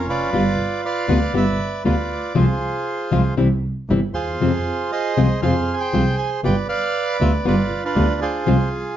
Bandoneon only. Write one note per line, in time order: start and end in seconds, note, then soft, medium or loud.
0.00 0.30 C#4 medium
0.09 1.06 F4 medium
0.09 0.84 B4 medium
0.09 0.81 D5 medium
0.85 1.35 B4 medium
0.85 1.82 D5 medium
0.85 1.33 F5 medium
1.36 1.84 B4 medium
1.36 1.83 E5 medium
1.86 2.33 F4 soft
1.86 2.33 B4 soft
1.86 2.38 D5 medium
2.36 3.34 F4 soft
2.36 3.34 G#4 soft
2.36 3.34 C5 medium
4.14 5.13 F4 soft
4.14 4.91 G#4 soft
4.14 4.91 C5 medium
4.92 5.41 G#4 medium
4.92 5.41 C5 medium
4.92 5.40 D#5 medium
5.42 6.41 G#4 medium
5.42 5.79 C5 medium
5.42 5.75 F5 medium
5.74 5.81 G#5 medium
5.80 6.41 C5 medium
5.80 6.16 G5 medium
6.18 6.30 G#5 medium
6.45 6.67 B4 medium
6.45 6.67 D5 medium
6.45 6.56 G5 medium
6.69 7.46 B4 medium
6.69 7.46 D5 medium
6.69 7.17 F5 medium
7.21 7.32 E5 medium
7.47 7.84 F4 medium
7.47 7.84 B4 medium
7.47 7.82 D5 medium
7.85 8.44 D4 medium
7.85 8.20 F4 medium
7.85 8.20 B4 medium
8.21 8.97 F4 medium
8.21 8.96 G#4 medium
8.21 8.69 C5 medium